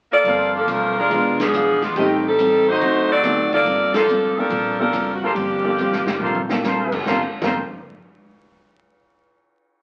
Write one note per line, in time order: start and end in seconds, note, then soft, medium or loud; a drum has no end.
0.12 0.51 A#3 medium
0.12 0.51 F4 medium
0.12 0.52 A4 medium
0.12 0.51 D5 loud
0.24 0.64 G1 medium
0.24 0.55 G2 soft
0.24 0.55 F3 soft
0.24 0.56 A#3 medium
0.24 0.56 C4 medium
0.24 1.11 A4 medium
0.24 1.10 A#4 medium
0.24 1.10 C5 medium
0.24 1.10 F5 medium
0.24 ride medium
0.56 0.68 F3 medium
0.56 0.68 A#3 medium
0.56 0.68 D4 medium
0.56 0.68 A4 medium
0.67 1.07 B1 medium
0.67 0.97 G2 medium
0.67 0.98 F3 medium
0.67 0.98 A3 medium
0.67 0.98 A#3 medium
0.67 0.99 C4 medium
0.67 0.96 D4 medium
0.67 0.97 A#4 medium
0.67 hi-hat pedal medium
0.67 ride medium
0.98 1.37 G#3 medium
0.98 1.37 D4 medium
0.98 1.37 F4 medium
0.98 1.37 A#4 medium
1.10 1.77 E1 medium
1.10 1.41 E3 soft
1.10 1.76 G#3 medium
1.10 1.41 G#3 soft
1.10 1.76 B3 medium
1.10 1.76 D4 medium
1.10 1.42 D4 soft
1.10 1.76 F4 medium
1.10 1.42 F4 soft
1.10 ride medium
1.39 1.82 F3 medium
1.39 1.82 B3 medium
1.39 1.81 D4 medium
1.39 1.83 G#4 medium
1.39 snare medium
1.39 ride medium
1.53 1.83 E3 medium
1.53 1.84 G#3 medium
1.53 1.84 D4 medium
1.53 1.84 F4 medium
1.53 hi-hat pedal medium
1.82 1.95 E2 medium
1.82 1.96 G#3 medium
1.82 1.96 B3 medium
1.82 1.96 D4 medium
1.82 1.96 F4 medium
1.82 snare soft
1.82 ride soft
1.96 2.77 A1 medium
1.96 2.26 A2 soft
1.96 2.23 D#3 medium
1.96 2.26 G3 soft
1.96 2.22 A3 medium
1.96 2.23 A3 medium
1.96 2.23 C4 medium
1.96 2.22 C4 medium
1.96 2.27 C4 soft
1.96 2.22 D#4 soft
1.96 2.27 D#4 soft
1.96 2.23 G4 medium
1.96 2.16 G4 medium
1.96 2.22 G4 medium
1.96 2.16 A4 medium
1.96 2.16 C5 medium
1.96 2.16 D#5 medium
1.96 ride medium
2.27 2.68 G3 medium
2.27 2.68 C4 medium
2.27 2.68 D#4 medium
2.27 2.68 A4 medium
2.39 2.69 A2 medium
2.39 2.69 G3 medium
2.39 2.69 C4 medium
2.39 2.69 D#4 medium
2.39 hi-hat pedal medium
2.39 ride medium
2.68 3.10 A3 medium
2.68 3.21 D#4 medium
2.68 3.10 D#4 medium
2.68 3.21 F#4 medium
2.68 3.10 F#4 medium
2.68 3.21 C5 medium
2.68 3.10 C5 loud
2.68 3.21 D#5 medium
2.81 3.48 D2 medium
2.81 3.11 D3 soft
2.81 3.12 F#3 soft
2.81 3.12 C4 soft
2.81 3.12 D#4 soft
2.81 ride medium
3.10 3.50 C4 medium
3.10 3.50 F#4 medium
3.10 3.50 A4 medium
3.10 3.50 D5 medium
3.23 3.53 D3 medium
3.23 3.54 F#3 medium
3.23 3.66 A3 medium
3.23 3.66 C4 soft
3.23 3.54 C4 medium
3.23 3.66 D#4 soft
3.23 3.54 D#4 medium
3.23 3.66 A4 medium
3.23 cross-stick medium
3.23 hi-hat pedal medium
3.23 ride medium
3.51 3.64 D2 medium
3.51 3.92 A#3 medium
3.51 3.92 F4 medium
3.51 3.92 A4 medium
3.51 3.92 D5 medium
3.51 ride soft
3.65 4.33 G1 medium
3.65 3.96 G2 soft
3.65 3.96 F3 soft
3.65 3.97 A#3 soft
3.65 3.97 C4 soft
3.65 ride medium
3.94 4.34 F3 medium
3.94 4.34 A#3 medium
3.94 4.34 D4 medium
3.94 4.03 F4 medium
3.94 4.03 A4 medium
3.94 4.34 A4 medium
3.94 4.04 A#4 medium
3.94 4.04 C5 medium
3.94 snare medium
3.94 ride medium
4.08 4.38 G2 medium
4.08 4.39 F3 medium
4.08 4.39 A#3 medium
4.08 4.39 C4 medium
4.08 hi-hat pedal medium
4.36 4.79 F3 medium
4.36 4.50 A#3 medium
4.36 4.50 C4 medium
4.36 4.78 D4 medium
4.36 4.50 F4 medium
4.36 4.78 A4 medium
4.36 4.50 A4 medium
4.36 4.79 A#4 medium
4.36 muted upright bass stroke soft
4.50 4.90 A#1 medium
4.50 4.81 G2 soft
4.50 4.81 F3 soft
4.50 4.82 A#3 soft
4.50 ride medium
4.54 4.82 C4 soft
4.79 5.10 F3 medium
4.79 4.92 A#3 medium
4.79 4.92 C4 medium
4.79 5.10 D4 medium
4.79 4.92 F4 medium
4.79 5.10 A4 medium
4.79 4.92 A4 medium
4.79 5.11 A#4 medium
4.91 5.32 F#1 medium
4.91 5.23 G2 medium
4.91 5.24 F3 medium
4.91 5.24 A#3 medium
4.91 5.24 C4 medium
4.91 cross-stick medium
4.91 hi-hat pedal medium
4.91 ride medium
5.14 5.23 F#4 medium
5.22 6.64 F3 medium
5.22 6.64 A#3 medium
5.22 6.64 D4 medium
5.22 5.31 F4 medium
5.22 6.64 G4 medium
5.22 5.31 A4 medium
5.22 5.31 A#4 medium
5.22 5.31 C5 medium
5.35 5.88 G1 medium
5.35 5.66 G2 soft
5.35 5.67 F3 soft
5.35 5.67 A#3 soft
5.35 5.67 C4 soft
5.35 ride medium
5.64 5.76 A#3 medium
5.64 5.77 C4 medium
5.64 5.77 F4 medium
5.64 5.77 A4 medium
5.78 6.09 G2 medium
5.78 6.09 F3 medium
5.78 6.10 A#3 medium
5.78 6.10 C4 medium
5.78 hi-hat pedal medium
5.92 6.05 A1 medium
5.92 snare soft
6.06 6.19 F#1 medium
6.06 snare medium
6.20 6.88 A#1 medium
6.20 6.51 G2 soft
6.20 6.52 F3 soft
6.20 6.52 A#3 soft
6.20 6.40 F4 medium
6.20 6.41 A4 medium
6.20 6.40 A#4 medium
6.20 6.40 C5 medium
6.20 floor tom medium
6.24 6.53 C4 soft
6.35 floor tom medium
6.49 6.62 A#3 medium
6.49 6.62 C4 medium
6.49 6.62 F4 medium
6.49 6.63 A4 medium
6.49 snare medium
6.63 6.94 G2 medium
6.63 6.94 F3 medium
6.63 6.94 A#3 medium
6.63 6.95 C4 medium
6.63 7.05 F4 medium
6.63 7.05 A4 medium
6.63 7.05 A#4 medium
6.63 7.05 C5 medium
6.63 snare soft
6.63 hi-hat pedal medium
6.92 7.05 F#1 medium
6.92 kick medium
6.92 crash medium
7.06 7.22 G1 medium
7.06 7.23 G2 medium
7.06 7.24 F3 medium
7.06 7.24 A#3 medium
7.06 7.24 C4 soft
7.06 7.24 C4 medium
7.06 7.19 F4 medium
7.06 7.24 F4 medium
7.06 7.19 A4 medium
7.06 7.25 A4 medium
7.06 7.19 A#4 medium
7.06 7.19 C5 medium
7.06 kick medium
7.06 snare medium
7.41 7.62 G1 medium
7.41 7.57 G2 medium
7.41 7.57 F3 medium
7.41 7.61 A#3 medium
7.41 7.58 A#3 medium
7.41 7.61 C4 soft
7.41 7.58 C4 medium
7.41 7.56 F4 medium
7.41 7.61 F4 medium
7.41 7.56 A4 medium
7.41 7.61 A4 medium
7.41 7.56 A#4 medium
7.41 7.56 C5 medium
7.41 kick medium
7.41 snare medium
7.41 crash medium